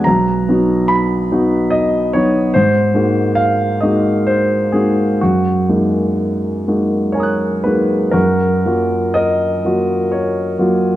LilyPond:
<<
  \new Staff \with { instrumentName = "Grand piano" } { \time 3/4 \key fis \major \tempo 4 = 66 << { r2. | r2. | r2 <gis'' ais'' dis''' fis'''>4 | r2. | } \\ { ais''4 b''4 dis''8 cis''8 | bis'4 eis''8 dis''8 bis'8 gis'8 | fis'2 <ais' cis''>8 <gis' b'>8 | <fis' ais'>4 <ais' dis''>4 <ais' cis''>4 | } >> }
  \new Staff \with { instrumentName = "Grand piano" } { \time 3/4 \key fis \major b,,8 <fis b dis' fis'>4 <fis b dis' fis'>4 <fis b dis' fis'>8 | gis,8 <gis ais dis' fis'>4 <gis ais dis' fis'>4 <gis ais dis' fis'>8 | fis,8 <gis ais dis' fis'>4 <gis ais dis' fis'>4 <gis ais dis' fis'>8 | fis,8 <fis ais eis' fis'>4 <fis ais eis' fis'>4 <fis ais eis' fis'>8 | }
>>